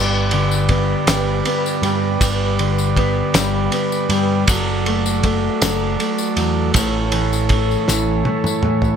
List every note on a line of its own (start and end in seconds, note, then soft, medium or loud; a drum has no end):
0.00 0.94 G1 medium
0.00 1.83 G2 medium
0.00 4.45 G4 medium
0.00 4.45 B4 medium
0.00 6.71 D5 medium
0.31 2.21 D3 medium
0.31 ride medium
0.51 tambourine medium
0.69 1.46 B3 medium
0.69 kick medium
0.69 ride medium
1.07 1.41 G1 medium
1.07 1.83 G3 medium
1.07 snare loud
1.07 ride medium
1.07 tambourine medium
1.45 2.97 B3 medium
1.45 ride medium
1.45 tambourine soft
1.66 tambourine medium
1.82 2.16 G2 medium
1.82 3.34 G3 medium
1.82 ride medium
1.82 tambourine soft
2.21 3.21 G1 medium
2.21 4.11 G2 medium
2.21 kick loud
2.21 ride loud
2.21 tambourine medium
2.59 4.48 D3 medium
2.59 ride medium
2.79 tambourine medium
2.96 3.72 B3 medium
2.96 kick medium
2.96 ride medium
3.34 3.68 G1 medium
3.34 4.10 G3 medium
3.34 snare loud
3.34 ride medium
3.34 tambourine loud
3.72 4.48 B3 medium
3.72 ride medium
3.72 tambourine soft
3.92 tambourine medium
4.09 4.43 G2 medium
4.09 4.48 G3 medium
4.09 ride medium
4.09 tambourine soft
4.48 5.48 F#1 medium
4.48 5.61 F#3 medium
4.48 6.73 F#4 medium
4.48 8.96 A4 medium
4.48 kick loud
4.48 ride loud
4.48 tambourine loud
4.86 5.23 A3 medium
4.86 ride medium
5.06 tambourine medium
5.23 5.99 A3 medium
5.23 kick medium
5.23 ride medium
5.62 5.95 F#1 loud
5.62 6.37 F#3 medium
5.62 snare loud
5.62 ride medium
5.62 tambourine loud
6.00 6.75 A3 medium
6.00 ride medium
6.00 tambourine soft
6.18 tambourine medium
6.37 6.70 E2 medium
6.37 6.75 F#3 medium
6.37 ride medium
6.37 tambourine soft
6.74 7.75 A1 loud
6.74 8.64 A2 medium
6.74 8.96 E4 medium
6.74 8.96 C#5 medium
6.74 kick loud
6.74 ride loud
6.74 tambourine loud
7.12 7.88 E3 medium
7.12 ride medium
7.33 tambourine medium
7.49 8.25 A3 medium
7.49 kick medium
7.49 ride medium
7.71 tambourine soft
7.88 8.22 A1 loud
7.88 8.63 E3 medium
7.88 snare medium
7.88 tambourine loud
8.25 8.96 A3 medium
8.25 high tom medium
8.44 mid tom medium
8.44 tambourine medium
8.63 8.96 A2 medium
8.63 8.96 E3 medium
8.63 mid tom loud
8.82 floor tom medium
8.82 tambourine soft